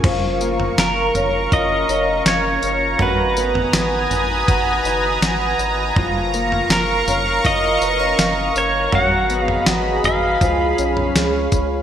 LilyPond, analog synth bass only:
\new Staff \with { instrumentName = "Analog synth bass" } { \clef bass \time 4/4 \key fis \major \tempo 4 = 81 fis,,4 fis,,8 fis,,8 fis,,8 eis,,8 fis,,8 fis,,8 | gis,,4 gis,,8 gis,,8 gis,,8 fis,,8 gis,,8 gis,,8 | fis,,4 fis,,8 fis,,8 fis,,8 eis,,8 fis,,8 fis,,8 | gis,,4 gis,,8 gis,,8 cis,8 b,,8 cis,8 cis,8 | }